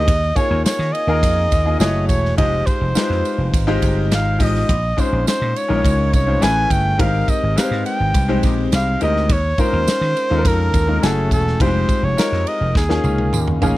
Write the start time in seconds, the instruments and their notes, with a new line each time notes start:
Already playing: flugelhorn D#5
0.08 slap bass D#2, kick, ride, tambourine
0.35 grand piano A#3 D#4 F4 G#4 C#5, flugelhorn C#5, kick, ride, tambourine
0.51 slap bass D#2
0.65 flugelhorn C#5, muted slap bass stroke, snare, ride, tambourine
0.79 slap bass D#3, snare
0.93 flugelhorn D#5, ride
1.07 slap bass D#2, grand piano A#3 D#4 F4 G#4 A#4
1.23 slap bass F2, kick, ride, tambourine
1.51 slap bass D#2, kick, ride, tambourine
1.65 grand piano A#3 D#4 F4 G#4 D#5
1.80 slap bass F#1, grand piano A3 E4 F#4 G#4 C#5, flugelhorn D#5, snare, ride, tambourine
2.08 slap bass E1, flugelhorn C#5, kick, ride, tambourine
2.25 snare
2.37 slap bass F1, grand piano G#3 D#4 F4 G4 C5, flugelhorn D#5, kick, ride
2.66 flugelhorn C5, kick, ride, tambourine
2.81 slap bass F1
2.95 grand piano G#3 D#4 F4 G4 B4, muted slap bass stroke, snare, ride, tambourine
3.02 grand piano C5
3.10 slap bass F2, snare
3.25 ride, tambourine
3.38 slap bass F1
3.54 slap bass G#1, kick, ride, tambourine
3.67 grand piano G#3 D#4 F4 G4 C5
3.82 slap bass G1, kick, ride, tambourine
4.11 slap bass G#1, snare, ride, tambourine
4.15 flugelhorn F5
4.39 slap bass A1, grand piano G#3 D#4 F4 G4 D#5, kick, open hi-hat, ride, tambourine
4.43 flugelhorn D#5
4.56 snare
4.69 slap bass A#1, kick, hi-hat pedal, ride
4.97 grand piano G#3 C#4 D#4 F4 C5, flugelhorn C5, kick, ride, tambourine
5.13 slap bass A#1
5.27 flugelhorn C5, snare, ride, tambourine
5.41 slap bass A#2
5.56 flugelhorn C#5, ride, tambourine
5.68 slap bass A#1, grand piano G#3 C#4 D#4 F4 A#4
5.76 grand piano C#5
5.85 slap bass C#2, kick, ride, tambourine
6.13 slap bass C2, flugelhorn C#5, kick, ride, tambourine
6.26 grand piano G#3 C#4 D#4 F4 C5
6.41 slap bass A1, grand piano A3 C#4 E4 G#4 B4, flugelhorn G#5, snare, ride, tambourine
6.70 slap bass G1, flugelhorn G5, kick, ride, tambourine
6.98 slap bass G#1, grand piano G#3 C4 D#4 G4 A#4, flugelhorn F5, kick, ride
7.28 flugelhorn D#5, kick, ride, tambourine
7.43 slap bass G#1
7.56 grand piano G#3 C4 D#4 G4 B4, flugelhorn F5, snare, ride, tambourine
7.64 grand piano C5
7.71 slap bass G#2, snare
7.86 flugelhorn G5, ride, tambourine
8.00 slap bass G#1
8.14 slap bass C2, kick, ride, tambourine
8.28 grand piano G#3 C4 D#4 G4 C5
8.43 slap bass A#1, kick, ride, tambourine
8.72 slap bass C2, flugelhorn F5, snare, ride, tambourine
9.00 slap bass D2, grand piano G#3 C4 D#4 G4 A#4, flugelhorn D#5, ride, tambourine
9.16 snare
9.29 slap bass D#2, flugelhorn C#5, kick, ride, tambourine
9.58 grand piano G#3 C#4 D#4 F4 A#4, flugelhorn C5, kick, ride, tambourine
9.73 slap bass D#2
9.88 muted slap bass stroke, snare, ride, tambourine
10.01 slap bass D#3, snare
10.17 ride, tambourine
10.30 slap bass D#2, grand piano G#3 C#4 D#4 F4 A4
10.38 grand piano A#4
10.45 slap bass F2, flugelhorn A#4, kick, ride, tambourine
10.74 slap bass D#2, kick, ride, tambourine
10.87 grand piano G#3 C#4 D#4 F4 A#4
11.02 slap bass F#1, grand piano A3 C#4 E4 F#4 G#4, flugelhorn A4, snare, ride, tambourine
11.31 slap bass E1, flugelhorn A4, kick, ride, tambourine
11.47 snare
11.60 slap bass F1, grand piano G3 C4 D#4 F4 G4, flugelhorn C5, kick, ride, tambourine
11.67 grand piano G#3
11.89 kick, ride, tambourine
12.03 slap bass F1, flugelhorn C#5
12.17 grand piano G#3 C4 D#4 F4 A#4, snare, ride, tambourine
12.32 slap bass F2, snare
12.47 flugelhorn D#5, ride
12.61 slap bass F1
12.75 slap bass D#2, flugelhorn G#4, kick, snare, tambourine
12.89 grand piano A#3 C#4 D#4 F4 G#4, snare
13.04 slap bass C#2, high tom, tambourine
13.18 high tom
13.33 slap bass D#2, mid tom, tambourine
13.47 mid tom
13.62 slap bass A1, grand piano A#3 C#4 D#4 F4 G#4, floor tom, tambourine